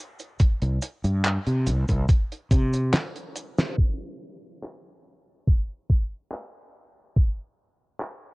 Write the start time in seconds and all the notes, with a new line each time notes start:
0.19 closed hi-hat, cabasa
0.39 muted fretless electric bass stroke, kick, closed hi-hat, cabasa
0.62 C2, closed hi-hat
0.82 closed hi-hat, cabasa
1.04 G2, closed hi-hat, cabasa
1.24 clap, closed hi-hat, cabasa
1.46 C3, closed hi-hat
1.66 C2, closed hi-hat, cabasa
1.88 C2, kick, closed hi-hat, cabasa
2.09 kick, closed hi-hat, cabasa
2.32 closed hi-hat
2.51 C3, kick, closed hi-hat, cabasa
2.73 closed hi-hat, cabasa
2.93 snare, clap, closed hi-hat, cabasa
3.16 closed hi-hat
3.36 closed hi-hat, cabasa
3.58 snare, closed hi-hat, cabasa
3.78 kick
4.63 clap
5.47 kick
5.89 kick
6.31 clap
7.16 kick
8.00 clap